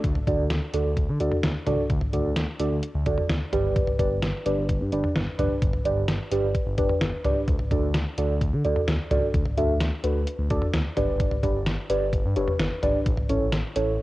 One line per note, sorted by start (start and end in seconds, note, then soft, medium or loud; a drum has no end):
0.04 0.14 D2 loud
0.04 kick loud
0.04 closed hi-hat medium
0.15 mid tom medium
0.27 0.37 D2 loud
0.27 0.43 D4 medium
0.27 0.43 F#4 medium
0.27 0.43 A4 medium
0.27 0.43 D5 medium
0.27 kick medium
0.27 closed hi-hat medium
0.39 0.49 D2 loud
0.50 0.61 D2 loud
0.50 snare loud
0.50 closed hi-hat medium
0.74 0.84 D2 medium
0.74 0.90 D4 medium
0.74 0.90 F#4 medium
0.74 0.90 A4 medium
0.74 0.90 D5 medium
0.74 closed hi-hat medium
0.85 0.95 D2 loud
0.97 1.07 D2 medium
0.97 kick medium
0.97 closed hi-hat medium
1.09 1.19 D3 medium
1.20 1.30 D2 loud
1.20 1.36 D4 medium
1.20 1.36 F#4 medium
1.20 1.36 A4 medium
1.20 1.36 D5 medium
1.20 closed hi-hat medium
1.32 mid tom medium
1.43 1.54 D2 loud
1.43 snare loud
1.43 closed hi-hat medium
1.67 1.77 C#2 medium
1.67 1.83 D4 medium
1.67 1.83 F#4 medium
1.67 1.83 A4 medium
1.67 1.83 D5 medium
1.67 closed hi-hat medium
1.67 mid tom medium
1.90 2.00 D2 loud
1.90 kick loud
1.90 closed hi-hat medium
2.01 mid tom medium
2.13 2.23 D2 medium
2.13 2.29 D4 medium
2.13 2.29 F#4 medium
2.13 2.29 A4 medium
2.13 2.29 D5 medium
2.13 closed hi-hat medium
2.25 2.35 D2 medium
2.36 2.47 D2 loud
2.36 snare loud
2.36 closed hi-hat medium
2.60 2.70 D2 loud
2.60 2.76 D4 medium
2.60 2.76 F#4 medium
2.60 2.76 A4 medium
2.60 2.76 D5 medium
2.60 closed hi-hat medium
2.71 2.81 D2 medium
2.83 closed hi-hat medium
2.94 3.05 D2 loud
3.06 3.16 D2 medium
3.06 3.22 D4 medium
3.06 3.22 F#4 medium
3.06 3.22 A4 medium
3.06 3.22 D5 medium
3.06 kick medium
3.06 closed hi-hat medium
3.18 mid tom medium
3.29 3.40 D2 loud
3.29 snare loud
3.29 closed hi-hat medium
3.53 3.83 G1 loud
3.53 3.90 D4 medium
3.53 3.90 G4 medium
3.53 3.90 B4 medium
3.53 3.90 D5 medium
3.53 closed hi-hat medium
3.53 mid tom loud
3.76 kick loud
3.76 closed hi-hat medium
3.87 mid tom medium
3.99 4.09 G1 loud
3.99 4.15 D4 medium
3.99 4.15 G4 medium
3.99 4.15 B4 medium
3.99 4.15 D5 medium
3.99 kick medium
3.99 closed hi-hat medium
4.11 4.21 G1 medium
4.22 4.33 G1 loud
4.22 snare loud
4.22 closed hi-hat medium
4.46 4.56 G1 medium
4.46 4.62 D4 medium
4.46 4.62 G4 medium
4.46 4.62 B4 medium
4.46 4.62 D5 medium
4.46 closed hi-hat medium
4.57 4.67 G1 loud
4.69 4.79 G1 loud
4.69 kick medium
4.69 closed hi-hat medium
4.81 4.91 G2 medium
4.92 5.02 G1 medium
4.92 5.08 D4 medium
4.92 5.08 G4 medium
4.92 5.08 B4 medium
4.92 5.08 D5 medium
4.92 closed hi-hat medium
5.04 mid tom medium
5.15 5.26 G1 loud
5.15 snare loud
5.15 closed hi-hat medium
5.39 5.49 F#1 medium
5.39 5.55 D4 medium
5.39 5.55 G4 medium
5.39 5.55 B4 medium
5.39 5.55 D5 medium
5.39 closed hi-hat medium
5.39 mid tom loud
5.62 5.72 G1 loud
5.62 kick loud
5.62 closed hi-hat medium
5.73 mid tom medium
5.85 5.95 G1 medium
5.85 6.01 D4 medium
5.85 6.01 G4 medium
5.85 6.01 B4 medium
5.85 6.01 D5 medium
5.85 closed hi-hat medium
5.97 6.07 G1 loud
6.08 6.19 G1 loud
6.08 snare loud
6.08 closed hi-hat medium
6.32 6.42 G1 medium
6.32 6.48 D4 medium
6.32 6.48 G4 medium
6.32 6.48 B4 medium
6.32 6.48 D5 medium
6.32 closed hi-hat medium
6.43 6.53 G1 loud
6.55 kick medium
6.55 closed hi-hat medium
6.67 6.77 G1 loud
6.78 6.88 G1 loud
6.78 6.94 D4 medium
6.78 6.94 G4 medium
6.78 6.94 B4 medium
6.78 6.94 D5 medium
6.78 kick medium
6.78 closed hi-hat medium
6.90 mid tom medium
7.01 7.12 G1 loud
7.01 snare loud
7.01 closed hi-hat medium
7.25 7.35 C#2 medium
7.25 7.41 D4 medium
7.25 7.41 G4 medium
7.25 7.41 B4 medium
7.25 7.41 D5 medium
7.25 closed hi-hat medium
7.25 mid tom loud
7.48 7.58 D2 loud
7.48 kick loud
7.48 closed hi-hat medium
7.59 mid tom medium
7.71 7.81 D2 loud
7.71 7.87 D4 medium
7.71 7.87 F#4 medium
7.71 7.87 A4 medium
7.71 7.87 D5 medium
7.71 kick medium
7.71 closed hi-hat medium
7.83 7.93 D2 loud
7.94 8.05 D2 loud
7.94 snare loud
7.94 closed hi-hat medium
8.18 8.28 D2 loud
8.18 8.34 D4 medium
8.18 8.34 F#4 medium
8.18 8.34 A4 medium
8.18 8.34 D5 medium
8.18 closed hi-hat medium
8.29 8.40 D2 loud
8.41 8.51 D2 loud
8.41 kick medium
8.41 closed hi-hat medium
8.53 8.63 D3 medium
8.64 8.74 D2 loud
8.64 8.80 D4 medium
8.64 8.80 F#4 medium
8.64 8.80 A4 medium
8.64 8.80 D5 medium
8.64 closed hi-hat medium
8.76 mid tom medium
8.88 8.98 D2 loud
8.88 snare loud
8.88 closed hi-hat medium
9.11 9.21 C#2 medium
9.11 9.27 D4 medium
9.11 9.27 F#4 medium
9.11 9.27 A4 medium
9.11 9.27 D5 medium
9.11 closed hi-hat medium
9.11 mid tom loud
9.34 9.44 D2 loud
9.34 kick loud
9.34 closed hi-hat medium
9.45 mid tom medium
9.57 9.67 D2 medium
9.57 9.74 D4 medium
9.57 9.74 F#4 medium
9.57 9.74 A4 medium
9.57 9.74 E5 medium
9.57 closed hi-hat medium
9.69 9.79 D2 medium
9.80 9.91 D2 loud
9.80 snare loud
9.80 closed hi-hat medium
10.04 10.14 D2 loud
10.04 10.20 D4 medium
10.04 10.20 F#4 medium
10.04 10.20 A4 medium
10.04 10.20 B4 medium
10.04 closed hi-hat medium
10.15 10.26 D2 medium
10.27 closed hi-hat medium
10.39 10.49 D2 loud
10.50 10.61 D2 medium
10.50 10.67 D4 medium
10.50 10.67 F#4 medium
10.50 10.67 A4 medium
10.50 10.67 D5 medium
10.50 kick medium
10.50 closed hi-hat medium
10.62 mid tom medium
10.74 10.84 D2 loud
10.74 snare loud
10.74 closed hi-hat medium
10.97 11.27 G1 loud
10.97 11.34 D4 medium
10.97 11.34 G4 medium
10.97 11.34 B4 medium
10.97 11.34 D5 medium
10.97 closed hi-hat medium
10.97 mid tom loud
11.20 kick loud
11.20 closed hi-hat medium
11.31 mid tom medium
11.43 11.54 G1 loud
11.43 11.60 D4 medium
11.43 11.60 G4 medium
11.43 11.60 B4 medium
11.43 11.60 D5 medium
11.43 kick medium
11.43 closed hi-hat medium
11.55 11.65 G1 loud
11.66 11.77 G1 loud
11.66 snare loud
11.66 closed hi-hat medium
11.90 12.00 G1 loud
11.90 12.06 D4 medium
11.90 12.06 G4 medium
11.90 12.06 B4 medium
11.90 12.06 D5 medium
11.90 closed hi-hat medium
12.02 12.12 G1 medium
12.13 12.23 G1 loud
12.13 kick medium
12.13 closed hi-hat medium
12.25 12.35 G2 loud
12.36 12.47 G1 loud
12.36 12.53 D4 medium
12.36 12.53 G4 medium
12.36 12.53 B4 medium
12.36 12.53 C#5 medium
12.36 closed hi-hat medium
12.48 mid tom medium
12.60 12.70 G1 loud
12.60 snare loud
12.60 closed hi-hat medium
12.83 12.93 G1 medium
12.83 12.99 D4 medium
12.83 12.99 G4 medium
12.83 12.99 B4 medium
12.83 12.99 D5 medium
12.83 closed hi-hat medium
12.83 mid tom loud
13.06 13.16 A1 loud
13.06 kick loud
13.06 closed hi-hat medium
13.17 mid tom medium
13.29 13.40 A1 medium
13.29 13.46 C#4 medium
13.29 13.46 E4 medium
13.29 13.46 A4 medium
13.29 13.46 C#5 medium
13.29 closed hi-hat medium
13.41 13.51 A1 loud
13.52 13.63 A1 loud
13.52 snare loud
13.52 closed hi-hat medium
13.76 13.86 A1 loud
13.76 13.92 C#4 medium
13.76 13.92 E4 medium
13.76 13.92 A4 medium
13.76 13.92 C#5 medium
13.76 closed hi-hat medium
13.88 13.98 A1 medium